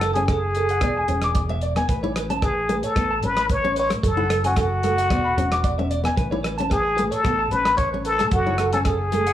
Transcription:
Already playing: fingered electric bass F#1, nylon-string guitar E4, muted trumpet A4
0.01 clean electric guitar A4, cross-stick, closed hi-hat
0.13 nylon-string guitar C#4, muted trumpet G#4, clean electric guitar G#5, closed hi-hat
0.26 muted trumpet G#4, clean electric guitar A4, kick, cross-stick, closed hi-hat
0.55 clean electric guitar A4, closed hi-hat
0.69 clean electric guitar F#5, closed hi-hat
0.81 fingered electric bass E1, nylon-string guitar B3, clean electric guitar D5, kick, cross-stick, closed hi-hat
0.97 clean electric guitar G#5
1.08 fingered electric bass E1, nylon-string guitar C#4, closed hi-hat
1.22 clean electric guitar D6, cross-stick, closed hi-hat
1.35 muted clean electric guitar stroke, kick, closed hi-hat
1.49 clean electric guitar E5, muted nylon-string guitar stroke
1.61 clean electric guitar D5, closed hi-hat
1.76 nylon-string guitar B3, clean electric guitar G#5, cross-stick, closed hi-hat
1.89 fingered electric bass A1, clean electric guitar B4, kick, closed hi-hat
2.03 nylon-string guitar E4, clean electric guitar C#5
2.16 clean electric guitar B4, cross-stick, closed hi-hat
2.30 nylon-string guitar C#4, clean electric guitar A5, closed hi-hat
2.42 muted trumpet G#4, clean electric guitar B4, kick, cross-stick, closed hi-hat
2.69 nylon-string guitar A3, clean electric guitar B4, closed hi-hat
2.83 muted trumpet A4, clean electric guitar C#5, closed hi-hat
2.96 fingered electric bass A1, nylon-string guitar B3, clean electric guitar B4, kick, cross-stick, closed hi-hat
3.11 clean electric guitar A5
3.23 fingered electric bass A1, nylon-string guitar C#4, muted trumpet B4, closed hi-hat
3.37 clean electric guitar B5, cross-stick, closed hi-hat
3.49 clean electric guitar B4, muted trumpet C#5, kick, closed hi-hat
3.64 nylon-string guitar C#4, clean electric guitar C#5
3.76 clean electric guitar B4, muted trumpet C#5, closed hi-hat
3.90 nylon-string guitar A3, cross-stick, closed hi-hat
4.03 fingered electric bass F#1, clean electric guitar A4, muted trumpet A4, kick, closed hi-hat
4.17 nylon-string guitar E4, clean electric guitar F#5
4.30 clean electric guitar A4, cross-stick, closed hi-hat
4.44 nylon-string guitar C#4, muted trumpet F#4, clean electric guitar G#5, closed hi-hat
4.56 muted trumpet F#4, clean electric guitar A4, kick, cross-stick, closed hi-hat
4.83 nylon-string guitar A3, clean electric guitar A4, closed hi-hat
4.98 clean electric guitar F#5, closed hi-hat
5.10 fingered electric bass E1, nylon-string guitar B3, clean electric guitar D5, kick, cross-stick, closed hi-hat
5.25 clean electric guitar B5
5.37 fingered electric bass E1, nylon-string guitar C#4, closed hi-hat
5.52 clean electric guitar D6, cross-stick, closed hi-hat
5.64 clean electric guitar D5, kick, closed hi-hat
5.79 nylon-string guitar C#4, clean electric guitar E5
5.91 clean electric guitar D5, closed hi-hat
6.04 nylon-string guitar B3, clean electric guitar G#5, cross-stick, closed hi-hat
6.17 fingered electric bass A1, clean electric guitar B4, kick, closed hi-hat
6.31 nylon-string guitar E4, clean electric guitar C#5
6.43 clean electric guitar B4, cross-stick, closed hi-hat
6.58 nylon-string guitar C#4, clean electric guitar A5, closed hi-hat
6.70 muted trumpet G#4, clean electric guitar B4, kick, cross-stick, closed hi-hat
6.97 nylon-string guitar A3, clean electric guitar B4, closed hi-hat
7.11 muted trumpet A4, clean electric guitar C#5, closed hi-hat
7.24 fingered electric bass A1, nylon-string guitar B3, clean electric guitar A4, kick, cross-stick, closed hi-hat
7.39 clean electric guitar A5
7.51 fingered electric bass A1, nylon-string guitar C#4, muted trumpet B4, closed hi-hat
7.65 clean electric guitar B5, cross-stick, closed hi-hat
7.77 clean electric guitar B4, muted trumpet C#5, kick, closed hi-hat
7.93 nylon-string guitar C#4, clean electric guitar C#5
8.05 muted trumpet A4, clean electric guitar B4, closed hi-hat
8.19 nylon-string guitar A3, clean electric guitar A5, cross-stick, closed hi-hat
8.31 fingered electric bass F#1, muted trumpet F#4, clean electric guitar A4, kick, closed hi-hat
8.46 nylon-string guitar E4, clean electric guitar C#5
8.58 clean electric guitar A4, cross-stick, closed hi-hat
8.73 nylon-string guitar C#4, muted trumpet A4, clean electric guitar G#5, closed hi-hat
8.85 muted trumpet G#4, clean electric guitar A4, kick, cross-stick, closed hi-hat
9.12 nylon-string guitar A3, clean electric guitar A4, closed hi-hat
9.27 clean electric guitar F#5, closed hi-hat

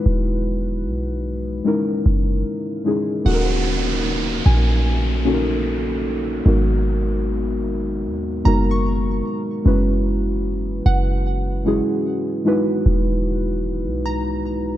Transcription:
Already playing: synth keys G#3 D#4 E4 F#4 B4
0.06 808-style bass E1
0.86 808-style bass B1
1.64 synth keys G#3 C#4 D#4 E4 A#4
2.06 808-style bass F#1
2.85 synth keys G#3 C#4 D#4 E4 G#4
3.24 808-style bass D#1, synth keys A#3 C#4 D#4 F#4 A4, synth pluck F#5, downlifter
3.34 synth keys A#4
4.46 808-style bass A#1, synth pluck G#5
5.24 synth keys A#3 C#4 D#4 F#4 A4
5.34 synth keys A#4
6.45 808-style bass G#1, synth keys G#3 B3 D#4 F#4 A#4
8.06 808-style bass D#2
8.44 808-style bass F#1, synth keys G#3 B3 D#4 F#4 A#4, synth pluck A#5
8.71 synth pluck C#6
9.64 808-style bass F#1, synth keys G#3 C#4 E4 F#4 B4
10.86 808-style bass F#1, synth pluck F#5
11.65 synth keys G#3 C#4 E4 F#4 G#4
12.45 synth keys G#3 D#4 E4 F#4 B4
12.86 808-style bass E1
13.86 808-style bass B1
14.06 synth pluck A#5

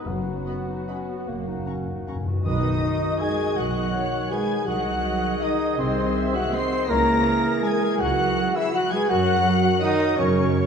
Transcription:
Already playing: bassoon B3, clarinet D#4
0.06 double bass section F#1, timpani F#2, cello section F#2, french horn section F#3, viola section F#4, oboe F#5
0.46 clarinet B3, violin section D#5 B5
0.68 clarinet D#4
0.88 clarinet C#4, violin section D#5 B5
1.09 clarinet B3
1.27 double bass section F#1, cello section F#2, timpani F#2, bassoon A#3, clarinet A#3
1.35 timpani F#2
1.43 timpani F#2
1.47 timpani F#2, clarinet D#4
1.59 timpani F#2
1.66 timpani F#2, clarinet C#4, violin section F#5 A#5 C#6
1.76 timpani F#2
1.84 timpani F#2
1.88 timpani F#2, clarinet D#4
2.00 timpani F#2
2.08 timpani F#2, clarinet C#4, violin section F#5 A#5 C#6
2.16 timpani F#2
2.24 timpani F#2, clarinet F#4
2.32 timpani F#2
2.45 double bass section B1, timpani B2, cello section D#3, bassoon D#3, french horn section D#4, trumpet D#4, clarinet F#4, viola section B4, oboe D#5, violin section D#5 D#6, flute section D#5
2.83 viola section D#5
3.21 cello section G#3, trumpet G#4, french horn section G#4, oboe G#5, flute section G#5, violin section G#5 G#6
3.56 double bass section B1, cello section F#3, trumpet F#4, french horn section F#4, oboe F#5, flute section F#5, violin section F#5 F#6
3.94 viola section C#5
4.31 cello section G#3, french horn section G#4, trumpet G#4, viola section B4, flute section G#5, oboe G#5, violin section G#5 G#6
4.67 double bass section C2, bassoon D#3, cello section F#3, french horn section F#4, trumpet F#4, clarinet G#4, viola section D#5, flute section F#5, oboe F#5, violin section F#5 F#6
5.04 viola section D#5
5.41 cello section D#3, trumpet D#4, french horn section D#4, oboe D#5, violin section D#5 D#6, flute section D#5
5.78 double bass section C2, cello section C3, trumpet C4, french horn section C4, flute section C5, violin section C5 C6, oboe C5
6.16 viola section E5
6.34 cello section F#3, french horn section F#4, trumpet F#4, flute section F#5, oboe F#5, violin section F#5 F#6
6.53 cello section C4, trumpet C5, french horn section C5, viola section D#5, oboe C6, flute section C6, violin section C6 C7
6.89 double bass section C#2, bassoon E3, cello section A#3, clarinet G#4, trumpet A#4, french horn section A#4, viola section C#5, oboe A#5, flute section A#5, violin section A#5 A#6
7.26 viola section A#4
7.63 cello section G#3, french horn section G#4, trumpet G#4, oboe G#5, violin section G#5 G#6, flute section G#5
8.00 double bass section C#2, cello section F#3, trumpet F#4, french horn section F#4, violin section F#5 F#6, flute section F#5, oboe F#5
8.38 viola section G#4
8.56 cello section E3, french horn section E4, trumpet E4, oboe E5, flute section E5, violin section E5 E6
8.74 cello section F#3, french horn section F#4, trumpet F#4, viola section B4, flute section F#5, violin section F#5 F#6, oboe F#5
8.92 cello section G#3, trumpet G#4, french horn section G#4, violin section G#5 G#6, flute section G#5, oboe G#5
9.09 double bass section F#2, cello section F#3, bassoon F#3, trumpet F#4, french horn section F#4, clarinet A#4, viola section A#4, oboe F#5, violin section F#5 F#6, flute section F#5
9.46 viola section F#4
9.82 cello section D#3, trumpet D#4, french horn section D#4, viola section A#4, violin section D#5 D#6, oboe D#5, flute section D#5
10.17 double bass section F#2, cello section C#3, trumpet C#4, french horn section C#4, violin section C#5 C#6, oboe C#5, flute section C#5
10.54 viola section C#5

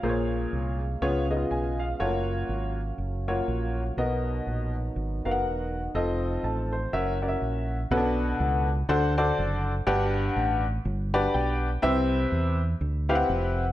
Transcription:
Already playing: upright piano F5
0.03 fingered electric bass A#1, upright piano A#2 A#3 F4 G#4 C5, french horn section G#3 A#3 C#4 F5
0.09 upright piano C#5
0.53 fingered electric bass C2
1.02 fingered electric bass C#2, upright piano C#3 B3 F4 G#4 C#5, french horn section B3
1.30 upright piano B3 D#4 G#4 D#5
1.36 upright piano F4
1.51 fingered electric bass B1, upright piano G#5
1.79 upright piano F5
2.00 fingered electric bass F#1, french horn section F#3 A#4, upright piano A3 F4 F#4 C#5
2.06 upright piano A#3
2.49 fingered electric bass G#1
2.98 fingered electric bass F#1
3.28 upright piano A#3 F4 F#4 C#5
3.48 fingered electric bass A#1
3.97 fingered electric bass B1, upright piano B2 B3 F#4 A#4 D#5, french horn section B3 D#4
4.47 fingered electric bass A#1
4.96 fingered electric bass G#1
5.25 fingered electric bass F#1, upright piano B3 F#4 A#4 F5
5.31 upright piano F#5
5.46 fingered electric bass E1
5.94 fingered electric bass F1, french horn section F3 A3 C4, upright piano C4 F4 A4 D#5
6.43 fingered electric bass A1, upright piano A5
6.72 upright piano C5
6.93 fingered electric bass F#1, french horn section F#3 A#3 C#4 E4, upright piano C#4 F#4 A#4 E5
7.22 upright piano C#4 F#4 A#4 D5
7.28 upright piano E5
7.42 fingered electric bass A#1
7.91 fingered electric bass B1, upright piano B2 C#4 F#4 A4 B4 F#5
7.97 upright piano D4
8.40 fingered electric bass C#2
8.89 fingered electric bass D2, upright piano D3 D4 F#4 A4 C5 F#5
9.18 upright piano D4 F#4 A4 C5 D5
9.38 fingered electric bass F#1
9.87 fingered electric bass G1, upright piano G2 D4 F#4 G4 B4 F#5
10.36 fingered electric bass A1
10.85 fingered electric bass G1
11.14 upright piano D4 F#4 G4 B4 D5 B5
11.34 fingered electric bass B1, upright piano G5
11.82 fingered electric bass C2, upright piano C3 C4 E4 G4 B4 E5
12.32 fingered electric bass E2
12.81 fingered electric bass D2
13.09 upright piano C4 E4 G4 B4 F5
13.15 upright piano F#5
13.29 fingered electric bass F1

